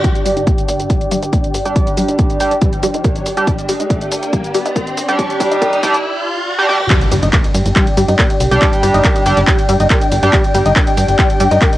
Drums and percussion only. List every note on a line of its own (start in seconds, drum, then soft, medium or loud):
0.04 kick loud
0.04 closed hi-hat loud
0.04 shaker soft
0.16 closed hi-hat medium
0.16 shaker soft
0.26 open hi-hat loud
0.26 shaker medium
0.37 closed hi-hat medium
0.37 shaker soft
0.47 kick loud
0.47 closed hi-hat medium
0.47 shaker soft
0.58 closed hi-hat medium
0.58 shaker soft
0.69 open hi-hat medium
0.69 shaker medium
0.80 closed hi-hat medium
0.80 shaker soft
0.90 kick loud
0.90 closed hi-hat loud
0.90 shaker soft
1.01 closed hi-hat medium
1.01 shaker soft
1.11 open hi-hat loud
1.11 shaker medium
1.23 closed hi-hat medium
1.23 shaker soft
1.33 kick loud
1.33 closed hi-hat loud
1.33 shaker soft
1.44 closed hi-hat medium
1.44 shaker soft
1.54 open hi-hat medium
1.54 shaker medium
1.66 closed hi-hat medium
1.66 shaker soft
1.76 kick loud
1.76 closed hi-hat loud
1.76 shaker soft
1.87 closed hi-hat medium
1.87 shaker soft
1.97 open hi-hat loud
1.97 shaker medium
2.08 closed hi-hat medium
2.08 shaker soft
2.19 kick loud
2.19 closed hi-hat loud
2.19 shaker soft
2.30 closed hi-hat medium
2.30 shaker soft
2.40 open hi-hat loud
2.40 shaker medium
2.51 closed hi-hat medium
2.51 shaker soft
2.61 kick loud
2.61 closed hi-hat loud
2.61 shaker soft
2.73 closed hi-hat medium
2.73 shaker soft
2.83 open hi-hat loud
2.83 shaker medium
2.94 closed hi-hat medium
2.94 shaker soft
3.04 kick loud
3.04 closed hi-hat medium
3.04 shaker soft
3.16 closed hi-hat medium
3.16 shaker soft
3.26 open hi-hat loud
3.26 shaker medium
3.37 closed hi-hat soft
3.37 shaker soft
3.47 kick loud
3.47 closed hi-hat medium
3.47 shaker soft
3.58 closed hi-hat medium
3.58 shaker soft
3.69 open hi-hat loud
3.69 shaker medium
3.80 closed hi-hat medium
3.80 shaker soft
3.90 kick loud
3.90 closed hi-hat loud
3.90 shaker soft
4.01 closed hi-hat medium
4.01 shaker soft
4.12 open hi-hat loud
4.12 shaker medium
4.23 closed hi-hat medium
4.23 shaker soft
4.33 kick loud
4.33 closed hi-hat medium
4.33 shaker soft
4.44 closed hi-hat medium
4.44 shaker soft
4.54 open hi-hat loud
4.54 shaker medium
4.66 closed hi-hat medium
4.66 shaker soft
4.76 kick loud
4.76 closed hi-hat loud
4.76 shaker soft
4.87 closed hi-hat medium
4.87 shaker soft
4.97 open hi-hat loud
4.97 shaker medium
5.09 closed hi-hat medium
5.09 shaker soft
5.19 kick loud
5.19 closed hi-hat medium
5.19 shaker soft
5.30 closed hi-hat soft
5.30 shaker soft
5.40 kick loud
5.40 open hi-hat loud
5.40 shaker medium
5.51 closed hi-hat medium
5.51 shaker soft
5.62 kick loud
5.62 closed hi-hat medium
5.62 shaker soft
5.73 closed hi-hat medium
5.73 shaker soft
5.83 kick loud
5.83 open hi-hat loud
5.83 shaker medium
5.94 closed hi-hat medium
5.94 shaker soft
6.69 high tom medium
6.80 mid tom medium
6.90 kick loud
6.90 clap loud
6.90 closed hi-hat loud
6.90 ride medium
6.90 shaker soft
7.01 closed hi-hat medium
7.01 ride medium
7.01 shaker soft
7.12 open hi-hat loud
7.12 ride medium
7.12 shaker medium
7.23 closed hi-hat medium
7.23 ride medium
7.23 shaker soft
7.33 kick loud
7.33 clap loud
7.33 closed hi-hat medium
7.33 ride medium
7.33 shaker soft
7.44 closed hi-hat medium
7.44 ride medium
7.44 shaker soft
7.55 open hi-hat loud
7.55 ride medium
7.55 shaker medium
7.66 closed hi-hat medium
7.66 ride medium
7.66 shaker soft
7.76 kick loud
7.76 clap loud
7.76 closed hi-hat loud
7.76 ride medium
7.76 shaker soft
7.87 closed hi-hat medium
7.87 ride medium
7.87 shaker soft
7.97 open hi-hat loud
7.97 ride medium
7.97 shaker medium
8.08 closed hi-hat medium
8.08 ride medium
8.08 shaker soft
8.19 kick loud
8.19 clap loud
8.19 closed hi-hat loud
8.19 ride medium
8.19 shaker soft
8.30 closed hi-hat medium
8.30 ride medium
8.30 shaker soft
8.40 open hi-hat loud
8.40 ride medium
8.40 shaker medium
8.51 closed hi-hat medium
8.51 ride medium
8.51 shaker soft
8.62 kick loud
8.62 clap loud
8.62 closed hi-hat loud
8.62 ride medium
8.62 shaker soft
8.73 closed hi-hat medium
8.73 ride medium
8.73 shaker soft
8.83 open hi-hat loud
8.83 ride medium
8.83 shaker medium
8.94 closed hi-hat medium
8.94 ride medium
8.94 shaker soft
9.04 kick loud
9.04 clap loud
9.04 closed hi-hat loud
9.04 ride medium
9.04 shaker soft
9.16 closed hi-hat medium
9.16 ride medium
9.16 shaker soft
9.26 open hi-hat loud
9.26 ride medium
9.26 shaker medium
9.37 closed hi-hat medium
9.37 ride medium
9.37 shaker soft
9.47 kick loud
9.47 clap loud
9.47 closed hi-hat loud
9.47 shaker soft
9.58 closed hi-hat medium
9.58 ride medium
9.58 shaker soft
9.69 open hi-hat loud
9.69 ride medium
9.69 shaker medium
9.80 closed hi-hat medium
9.80 ride medium
9.80 shaker soft
9.90 kick loud
9.90 clap loud
9.90 closed hi-hat loud
9.90 ride medium
9.90 shaker soft
10.01 closed hi-hat medium
10.01 ride medium
10.01 shaker soft
10.12 open hi-hat loud
10.12 ride medium
10.12 shaker medium
10.23 closed hi-hat medium
10.23 ride medium
10.23 shaker soft
10.33 kick loud
10.33 clap loud
10.33 closed hi-hat medium
10.33 ride medium
10.33 shaker soft
10.44 closed hi-hat medium
10.44 ride medium
10.44 shaker soft
10.54 open hi-hat loud
10.54 ride medium
10.54 shaker medium
10.66 closed hi-hat medium
10.66 ride medium
10.66 shaker soft
10.76 kick loud
10.76 clap loud
10.76 closed hi-hat loud
10.76 ride medium
10.76 shaker soft
10.87 closed hi-hat medium
10.87 ride medium
10.87 shaker soft
10.97 open hi-hat loud
10.97 ride medium
10.97 shaker medium
11.08 closed hi-hat medium
11.08 ride medium
11.08 shaker soft
11.19 kick loud
11.19 clap loud
11.19 closed hi-hat medium
11.19 ride medium
11.19 shaker soft
11.30 closed hi-hat medium
11.30 ride medium
11.30 shaker soft
11.40 open hi-hat loud
11.40 ride medium
11.40 shaker medium
11.51 closed hi-hat medium
11.51 ride medium
11.51 shaker soft
11.62 kick loud
11.62 clap loud
11.62 closed hi-hat medium
11.62 ride medium
11.62 shaker soft
11.73 closed hi-hat medium
11.73 ride medium
11.73 shaker soft